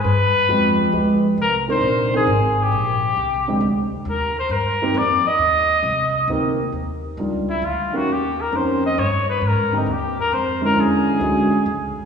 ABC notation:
X:1
M:3/4
L:1/8
Q:"Swing" 1/4=134
K:Eb
V:1 name="Trumpet"
_c4- c z | B c2 A2 G- | G4- G z | B c B2 d e- |
e4- e z | z3 _F =F _G | G B c e _d _c | B E G B c B |
^G6 |]
V:2 name="Grand piano"
z2 [F,A,=B,G]2 [F,A,B,G] z | z [E,CDB]2 [E,CDB] z2 | z3 [D,A,CG] z2 | z3 [E,B,CG] z2 |
z4 [E,B,CG] z | z2 [E,G,DF] z2 [E,B,_DG] | z2 [E,B,_DG] z3 | z [D,B,CG] z3 [D,A,_D_F]- |
[D,A,_D_F]2 [=D,^G,^C^F] z3 |]
V:3 name="Upright bass" clef=bass
G,,2 F,,2 D,,2 | C,,2 B,,,2 A,,,2 | B,,,2 C,,2 D,,2 | E,, z G,,2 F,, z |
E,,2 C,,2 D,,2 | E,,2 _D,,2 =D,,2 | E,,2 F,,2 G,,2 | A,,2 E,, z F,,2 |
=E,, z D,, z ^C,, z |]